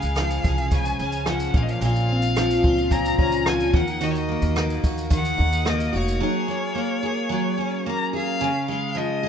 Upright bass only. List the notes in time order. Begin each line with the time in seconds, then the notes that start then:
0.03 C#2
0.44 C2
0.99 C#2
1.54 A#1
1.81 A#1
2.64 C#2
3.18 C#2
3.74 D#2
4.42 D#2
4.84 D#2
5.39 D#2
5.94 F1